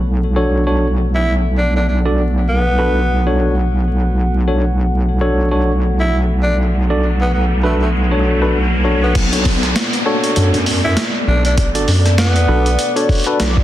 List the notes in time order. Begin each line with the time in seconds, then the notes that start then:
Already playing: B1 B3 A4 F#5
0.36 D4 F#4 A4 C#5
0.67 D4 F#4 A4 C#5
1.15 E4
1.58 D4
1.76 D4
1.88 D4
2.05 D4 F#4 A4 D5
2.49 B3
2.79 D4 F#4 A4 B4
3.27 D4 F#4 A4 C#5
4.30 riser
4.48 D4 F#4 A4 C#5
5.21 D4 F#4 A4 C#5
5.51 D4 F#4 A4 C#5
6.00 E4
6.43 D4
6.90 D4 F#4 A4 D5
7.21 B3
7.34 B3
7.63 A3 D4 F#4 A4 B4
7.81 A3
8.11 D4 F#4 A4 C#5
8.42 D4 F#4 A4 B4
8.84 D4 F#4 A4 C#5
9.03 B3
9.15 B1 B3 A4 D5, kick, closed hi-hat, crash, downlifter
9.32 D4 F#4 A4 C#5, closed hi-hat
9.45 kick, open hi-hat
9.63 cross-stick, closed hi-hat
9.76 snare, closed hi-hat
9.93 closed hi-hat
10.06 D4 F#4 A4 C#5
10.24 closed hi-hat
10.36 F#2 D4 F#4 A4 C#5, closed hi-hat
10.54 F#2, closed hi-hat
10.66 open hi-hat
10.85 E4
10.97 snare, closed hi-hat
11.28 B1 D4
11.45 D4, closed hi-hat
11.57 D4, kick, closed hi-hat
11.75 D4 F#4 A4 D5, closed hi-hat
11.88 F#2, open hi-hat
12.06 cross-stick, closed hi-hat
12.18 B3, snare, closed hi-hat
12.30 F2
12.36 closed hi-hat
12.48 B1 D4 F#4 A4 B4
12.66 closed hi-hat
12.79 closed hi-hat
12.96 D4 F#4 A4 C#5, closed hi-hat
13.09 kick, open hi-hat
13.12 open hi-hat
13.15 open hi-hat
13.18 open hi-hat
13.24 D4 F#4 A4 B4, open hi-hat
13.40 B1, snare, closed hi-hat
13.57 kick